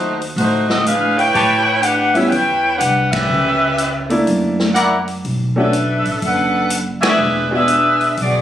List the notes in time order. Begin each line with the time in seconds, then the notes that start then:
Already playing: D#2 A3 D#4 F#4 C5
0.22 open hi-hat
0.36 A2 A3 D#4 F#4 C5, open hi-hat
0.69 C4 F#4 A4 D#5, snare
0.86 D4 G#4 B4 F5, closed hi-hat
1.18 E4 B4 C#5 G5, open hi-hat
1.34 A2 G4 B4 C#5 A5, open hi-hat
1.81 D4 G4 B4 F#5, closed hi-hat
2.14 G3 B3 C#4 E4 G4 B4 E5, open hi-hat
2.29 E2 E4 B4 C#5 G5, open hi-hat
2.78 C2 D4 G4 B4 F#5, closed hi-hat
3.11 C#4 G4 B4 E5, kick, ride
3.30 C#2
3.78 closed hi-hat
4.10 A3 A#3 D4 E4, open hi-hat
4.27 F#2, open hi-hat
4.60 snare
4.74 E4 A#4 D5 F#5, closed hi-hat
5.08 open hi-hat
5.25 B1, open hi-hat
5.56 A3 C#4 D4 F#4 A4 B4 E5
5.73 closed hi-hat
6.05 A1, open hi-hat
6.22 F#1 D4 A4 B4 F#5, open hi-hat
6.70 closed hi-hat
7.01 F#4 D5 E5 G#5, snare, ride
7.06 D4 G#4 B4 E5
7.18 E1
7.51 G#3 B3 D4 F#4
7.55 D4 G#4 B4 E5
7.68 closed hi-hat
8.01 open hi-hat
8.17 B1 D5, open hi-hat
8.21 B3 F#4 G#4